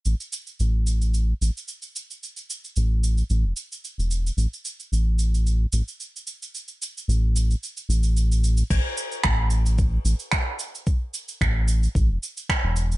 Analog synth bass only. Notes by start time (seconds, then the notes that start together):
0.06 A1
0.60 A1
1.41 A1
2.76 A1
3.30 A1
3.44 E1
3.98 E1
4.37 A1
4.92 A1
5.73 A1
7.08 A1
7.89 A1
8.71 A1
9.25 A1
10.05 A1
11.41 A1
11.95 A1
12.10 E1
12.63 E1